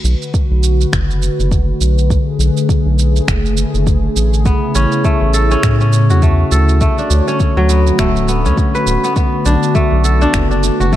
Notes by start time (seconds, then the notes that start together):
Already playing: D3 A3 F#4 B4
0.04 B1, shaker
0.22 shaker
0.34 kick, shaker
0.51 B1
0.64 shaker
0.81 shaker
0.93 F#1, finger snap, kick, shaker
1.11 shaker
1.22 shaker
1.40 F#1, shaker
1.52 kick, shaker
1.81 B1, shaker
1.99 shaker
2.10 G#4, kick, shaker
2.39 B1, shaker
2.57 shaker
2.69 kick, shaker
2.86 B1
2.99 shaker
3.16 shaker
3.28 F#1, finger snap, kick, shaker
3.46 shaker
3.57 shaker
3.74 F#1, shaker
3.87 kick, shaker
4.16 A1, shaker
4.34 shaker
4.45 C#3 B3 E4, kick, shaker
4.75 A1 C#4, shaker
4.92 shaker
5.05 A3, kick, shaker
5.22 A1
5.34 A4, shaker
5.51 C#4, shaker
5.63 A2, finger snap, kick, shaker
5.81 C#4, shaker
5.93 shaker
6.10 E2 F#4, shaker
6.22 A3, kick, shaker
6.52 D2 A4, shaker
6.69 shaker
6.81 D3 A3 F#4 C#5, kick, shaker
6.98 D4, shaker
7.10 D2, shaker
7.28 C#4, shaker
7.40 kick, shaker
7.57 D2 F#3
7.69 B3, shaker
7.87 shaker
7.99 D1 A3, finger snap, kick, shaker
8.16 shaker
8.28 B3, shaker
8.45 D2 C#4, shaker
8.58 kick, shaker
8.75 B4, shaker
8.86 D1, shaker
9.04 B3, shaker
9.16 A3 B3, kick, shaker
9.46 B1 D4, shaker
9.63 shaker
9.75 A3, kick, shaker
9.92 B1
10.04 A4, shaker
10.22 D4, shaker
10.34 F#1, finger snap, kick, shaker
10.51 D4, shaker
10.64 shaker
10.80 F#1 F#4, shaker
10.93 A3, kick, shaker